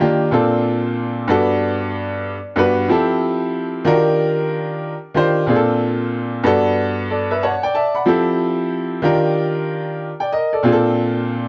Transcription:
0.00 0.27 D#3 medium
0.00 0.27 A#3 medium
0.00 0.27 D4 medium
0.00 0.28 F4 medium
0.00 0.28 G4 medium
0.31 1.28 A#2 medium
0.31 1.29 C4 medium
0.31 1.27 D4 medium
0.31 1.29 F4 medium
0.31 1.29 A4 medium
1.28 2.34 G2 medium
1.28 2.35 B3 medium
1.28 2.35 D4 medium
1.28 2.35 F#4 medium
1.28 2.36 A4 medium
2.56 2.84 G2 medium
2.56 2.85 B3 medium
2.56 2.85 D4 medium
2.56 2.86 F#4 medium
2.56 2.86 B4 medium
2.88 3.86 F3 medium
2.88 3.86 C4 medium
2.88 3.87 E4 medium
2.88 3.87 G4 medium
2.88 3.87 A4 medium
3.85 4.92 D#3 medium
3.85 4.92 D4 medium
3.85 4.93 F4 medium
3.85 3.95 F#4 medium
3.85 4.93 A#4 medium
3.93 4.96 G4 medium
5.14 5.43 D#3 medium
5.14 5.43 D4 medium
5.14 5.43 F4 medium
5.14 5.44 G4 medium
5.14 5.44 C5 medium
5.46 6.44 A#2 medium
5.46 6.44 C4 medium
5.46 6.43 D4 medium
5.46 6.45 F4 medium
5.46 5.57 G#4 medium
5.56 6.45 A4 medium
6.43 7.50 G2 medium
6.43 7.51 B3 medium
6.43 7.51 D4 medium
6.43 7.52 F#4 medium
6.43 7.09 A4 loud
7.10 7.29 A4 medium
7.10 7.29 D5 medium
7.31 7.42 B4 medium
7.31 7.42 E5 medium
7.43 7.62 C#5 medium
7.43 7.62 F#5 medium
7.43 7.72 A5 medium
7.63 7.73 D5 medium
7.63 7.74 G5 medium
7.74 8.04 D5 medium
7.74 7.94 E5 medium
7.74 7.94 A5 medium
7.95 8.25 F#5 soft
7.95 8.25 B5 medium
8.06 9.03 F3 medium
8.06 9.03 C4 medium
8.06 9.03 E4 medium
8.06 9.03 G4 medium
8.06 9.04 A4 medium
9.02 10.09 D#3 medium
9.02 10.09 D4 medium
9.02 10.09 F4 medium
9.02 10.10 G4 medium
9.02 10.01 A#4 medium
10.20 10.32 D5 medium
10.20 10.31 G5 medium
10.32 10.52 A#4 medium
10.32 10.52 D#5 medium
10.53 10.71 A4 soft
10.53 10.83 D5 medium
10.63 11.48 A#2 medium
10.63 11.48 C4 medium
10.63 11.48 D4 medium
10.63 11.48 F4 medium
10.63 10.73 G#4 medium
10.72 11.48 A4 medium

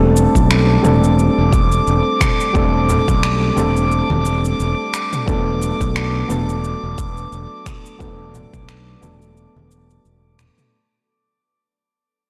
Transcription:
0.00 0.26 E1 loud
0.00 0.80 G3 medium
0.00 0.80 A3 medium
0.00 0.81 C4 medium
0.00 0.81 D4 medium
0.00 0.82 A4 loud
0.00 10.75 D6 medium
0.16 cabasa medium
0.35 0.77 B1 medium
0.35 kick medium
0.35 cabasa soft
0.51 finger snap medium
0.51 cabasa soft
0.82 1.28 E1 medium
0.82 2.50 G3 medium
0.82 2.51 A3 medium
0.82 2.51 C4 medium
0.82 2.51 D4 medium
0.82 2.52 A4 loud
0.82 mid tom medium
0.82 cabasa medium
1.04 cabasa soft
1.19 cabasa soft
1.38 1.80 E1 medium
1.53 kick medium
1.53 cabasa medium
1.72 cabasa soft
1.87 2.00 E1 medium
1.87 cabasa soft
2.21 finger snap medium
2.21 kick medium
2.21 mid tom medium
2.21 cabasa medium
2.40 cabasa soft
2.53 2.98 E1 loud
2.53 3.53 G3 medium
2.53 3.53 A3 medium
2.53 3.54 C4 medium
2.53 3.54 D4 medium
2.53 3.54 A4 loud
2.53 kick loud
2.53 cabasa soft
2.89 low conga medium
2.89 cabasa medium
3.08 3.50 B1 medium
3.08 kick loud
3.08 cabasa soft
3.23 finger snap medium
3.23 cabasa soft
3.56 4.01 E1 medium
3.56 5.23 G3 medium
3.56 5.24 A3 medium
3.56 5.24 C4 medium
3.56 5.25 D4 medium
3.56 5.25 A4 medium
3.56 mid tom medium
3.56 high conga medium
3.56 cabasa medium
3.77 cabasa soft
3.92 cabasa soft
4.10 4.52 E1 medium
4.10 high conga medium
4.25 cabasa medium
4.45 cabasa soft
4.60 4.73 E1 medium
4.60 cabasa soft
4.94 finger snap medium
4.94 cabasa medium
5.13 mid tom medium
5.13 cabasa soft
5.26 5.71 E1 medium
5.26 6.26 F#3 medium
5.26 6.26 A3 medium
5.26 6.27 B3 medium
5.26 6.27 D4 medium
5.26 6.27 A4 loud
5.26 kick loud
5.26 cabasa soft
5.62 cabasa medium
5.81 6.22 B1 loud
5.81 kick medium
5.81 cabasa soft
5.96 finger snap medium
5.96 cabasa soft
6.28 6.74 E1 medium
6.28 7.96 F#3 medium
6.28 7.96 A3 medium
6.28 7.97 B3 medium
6.28 7.97 D4 medium
6.28 7.98 A4 medium
6.28 mid tom medium
6.28 cabasa medium
6.49 cabasa soft
6.64 cabasa soft
6.84 7.25 E1 medium
6.98 kick medium
6.98 cabasa medium
7.17 cabasa soft
7.32 7.45 E1 medium
7.32 cabasa soft
7.66 finger snap medium
7.66 kick loud
7.66 mid tom medium
7.66 cabasa medium
7.86 cabasa soft
7.99 8.44 E1 loud
7.99 8.98 F#3 medium
7.99 8.99 A3 medium
7.99 8.99 B3 medium
7.99 9.00 D4 medium
7.99 9.00 A4 loud
7.99 kick loud
7.99 cabasa soft
8.35 low conga medium
8.35 cabasa medium
8.53 8.95 B1 medium
8.53 kick medium
8.53 cabasa soft
8.69 finger snap medium
8.69 cabasa soft
9.01 9.46 E1 medium
9.01 10.69 F#3 medium
9.01 10.69 A3 medium
9.01 10.70 B3 medium
9.01 10.70 D4 medium
9.01 10.71 A4 medium
9.01 mid tom medium
9.01 high conga medium
9.01 cabasa medium
9.22 cabasa soft
9.37 cabasa soft
9.56 9.98 E1 medium
9.56 high conga medium
9.71 cabasa medium
9.90 cabasa soft
10.05 10.49 E1 medium
10.05 cabasa soft
10.39 finger snap medium
10.39 low conga medium
10.39 cabasa medium
10.58 mid tom medium
10.58 cabasa soft

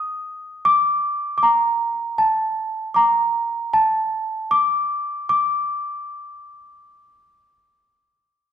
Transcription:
0.00 0.70 D#6 medium
0.65 1.36 D6 medium
1.38 1.45 D6 medium
1.43 2.24 A#5 medium
2.18 2.87 A5 medium
2.94 3.77 A#5 medium
2.94 3.00 D6 medium
3.73 4.54 A5 medium
4.51 5.25 D6 medium
5.29 8.53 D6 medium

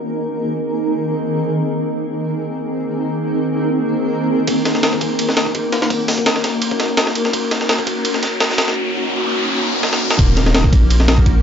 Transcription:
0.00 1.60 D#3 medium
0.00 1.60 A#3 medium
0.00 1.60 C4 medium
0.00 1.60 D#4 medium
0.00 1.60 G#4 medium
0.00 1.60 A#4 medium
1.62 4.45 D#3 medium
1.62 4.45 A#3 medium
1.62 4.45 C4 medium
1.62 4.45 D#4 medium
1.62 4.45 G#4 medium
1.62 4.46 A#4 medium
4.47 kick loud
4.47 ride medium
4.47 riser medium
4.65 snare medium
4.65 ride medium
4.75 snare soft
4.83 snare loud
4.83 ride medium
4.93 kick medium
5.01 kick medium
5.01 ride medium
5.19 ride medium
5.29 snare soft
5.37 snare loud
5.37 ride medium
5.46 kick medium
5.55 kick medium
5.55 ride medium
5.72 snare soft
5.72 ride medium
5.82 snare medium
5.90 kick loud
5.90 ride medium
6.08 snare soft
6.08 open hi-hat medium
6.18 kick loud
6.26 snare loud
6.26 ride medium
6.36 snare soft
6.44 snare medium
6.44 ride medium
6.62 ride medium
6.71 kick medium
6.80 snare medium
6.80 ride medium
6.97 snare loud
6.97 ride medium
7.07 snare soft
7.15 ride medium
7.25 snare soft
7.33 kick loud
7.33 ride medium
7.51 snare medium
7.51 ride medium
7.61 snare soft
7.69 snare loud
7.69 ride medium
7.79 kick loud
7.87 kick loud
7.87 ride medium
8.05 ride medium
8.14 snare soft
8.23 snare soft
8.23 ride medium
8.40 snare loud
8.40 ride medium
8.50 snare soft
8.58 snare loud
8.58 ride medium
8.68 snare medium
8.76 noise sweep medium
9.83 snare medium
9.93 snare medium
10.11 snare medium
10.19 10.71 D#1 loud
10.19 kick loud
10.19 ride medium
10.19 impact medium
10.37 snare medium
10.37 ride medium
10.46 snare soft
10.55 snare loud
10.55 ride medium
10.64 kick medium
10.73 11.42 A#1 loud
10.73 kick loud
10.73 ride medium
10.90 ride medium
11.00 snare soft
11.08 snare loud
11.08 ride medium
11.18 kick medium
11.26 kick medium
11.26 ride medium

